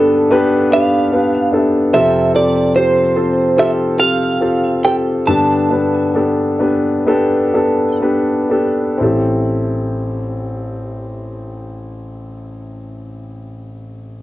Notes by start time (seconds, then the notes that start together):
Already playing: G2 D3 B3 D4 G4 A4 B4
0.30 B3 D4 G4 B4
0.71 B3 D4 G4 B4 F5
1.11 B3 D4 G4 B4
1.52 B3 D4 G4 A4 E5
1.93 F2 C3 C4 F4 G4 A4 E5
2.34 C4 F4 G4 A4 D5
2.75 C4 F4 G4 C5
3.16 C4 F4 G4 A4
3.57 C4 F4 G4 A4 E5
3.98 C4 F4 G4 A4 F5
4.41 C4 F4 G4 A4
4.84 C4 F4 G4 A4 G5
5.27 G2 D3 B3 D4 G4 A4 A5
5.70 B3 D4 G4 B4
6.14 B3 D4 G4 A4
6.59 B3 D4 G4 B4
7.06 B3 D4 G4 A4
7.53 B3 D4 G4 A4
8.01 B3 D4 G4 B4
8.49 B3 D4 G4 A4
8.98 A1 C4 E4 G4
9.03 A4